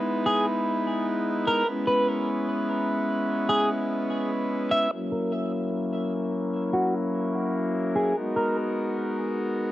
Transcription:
<<
  \new Staff \with { instrumentName = "Clean electric guitar" } { \time 4/4 \key fis \mixolydian \tempo 4 = 148 r8 gis'8 r2 r8 ais'8 | r8 b'8 r2. | r8 gis'8 r2 r8 e''8 | r8 ais'8 r2. |
r8 fis'8 r2 r8 gis'8 | r8 ais'8 r2. | }
  \new Staff \with { instrumentName = "Pipe organ" } { \time 4/4 \key fis \mixolydian << { b'1~ | b'1~ | b'1 | ais'1~ |
ais'1~ | ais'1 | } \\ { <gis b dis' e'>1 | <gis b cis' e'>1~ | <gis b cis' e'>1 | <fis ais cis' e'>1~ |
<fis ais cis' e'>1 | <gis b dis' fis'>1 | } >> }
>>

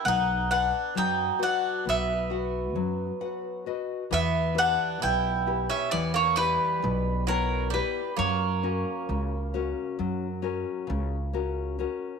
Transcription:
<<
  \new Staff \with { instrumentName = "Bouzouki" } { \time 9/8 \tempo 4. = 44 fis''8 fis''8 g''8 fis''8 e''2 r8 | e''8 fis''8 g''8. e''16 d''16 cis''16 b'4 ais'8 b'8 | cis''2. r4. | }
  \new Staff \with { instrumentName = "Nylon-string guitar" } { \time 9/8 b8 b'8 fis8 <fis' b' fis''>8 b8 <fis' b' fis''>8 fis8 <fis' b' fis''>8 <fis' b' dis''>8 | e8 <e' g' b'>8 b,8 <e' g' b'>8 e8 <e' g' b'>8 b,8 <b e' g''>8 <e' g' b'>8 | fis8 <cis' fis' ais'>8 cis8 <cis' fis' ais'>8 fis8 <cis' fis' ais'>8 cis8 <cis' fis' ais'>8 <cis' fis' ais'>8 | }
  \new Staff \with { instrumentName = "Bouzouki" } { \time 9/8 dis'8 d'8 dis'8 d'8 b2 r8 | b8 d'8 e'8. cis'16 b16 ais16 g4 fis8 g8 | ais2. r4. | }
  \new Staff \with { instrumentName = "Upright bass" } { \clef bass \time 9/8 b,,4 fis,8 r8 b,,4 fis,8 r4 | e,4 b,,4 e,4 b,,4. | fis,4 cis,4 fis,4 cis,4. | }
>>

